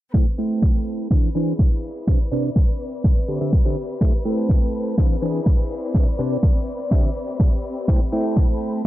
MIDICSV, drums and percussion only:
0, 0, Header, 1, 2, 480
1, 0, Start_track
1, 0, Key_signature, 0, "minor"
1, 0, Tempo, 483871
1, 137, Time_signature, 4, 2, 24, 8
1, 8798, End_track
2, 0, Start_track
2, 0, Title_t, "Drums"
2, 137, Note_on_c, 9, 36, 109
2, 237, Note_off_c, 9, 36, 0
2, 618, Note_on_c, 9, 36, 110
2, 717, Note_off_c, 9, 36, 0
2, 1098, Note_on_c, 9, 36, 108
2, 1197, Note_off_c, 9, 36, 0
2, 1578, Note_on_c, 9, 36, 107
2, 1677, Note_off_c, 9, 36, 0
2, 2058, Note_on_c, 9, 36, 110
2, 2157, Note_off_c, 9, 36, 0
2, 2538, Note_on_c, 9, 36, 111
2, 2637, Note_off_c, 9, 36, 0
2, 3018, Note_on_c, 9, 36, 114
2, 3117, Note_off_c, 9, 36, 0
2, 3498, Note_on_c, 9, 36, 110
2, 3597, Note_off_c, 9, 36, 0
2, 3978, Note_on_c, 9, 36, 113
2, 4077, Note_off_c, 9, 36, 0
2, 4457, Note_on_c, 9, 36, 117
2, 4557, Note_off_c, 9, 36, 0
2, 4937, Note_on_c, 9, 36, 115
2, 5037, Note_off_c, 9, 36, 0
2, 5417, Note_on_c, 9, 36, 113
2, 5517, Note_off_c, 9, 36, 0
2, 5897, Note_on_c, 9, 36, 110
2, 5997, Note_off_c, 9, 36, 0
2, 6377, Note_on_c, 9, 36, 116
2, 6477, Note_off_c, 9, 36, 0
2, 6857, Note_on_c, 9, 36, 117
2, 6957, Note_off_c, 9, 36, 0
2, 7338, Note_on_c, 9, 36, 108
2, 7437, Note_off_c, 9, 36, 0
2, 7818, Note_on_c, 9, 36, 108
2, 7917, Note_off_c, 9, 36, 0
2, 8058, Note_on_c, 9, 46, 97
2, 8157, Note_off_c, 9, 46, 0
2, 8298, Note_on_c, 9, 36, 111
2, 8397, Note_off_c, 9, 36, 0
2, 8539, Note_on_c, 9, 46, 97
2, 8638, Note_off_c, 9, 46, 0
2, 8798, End_track
0, 0, End_of_file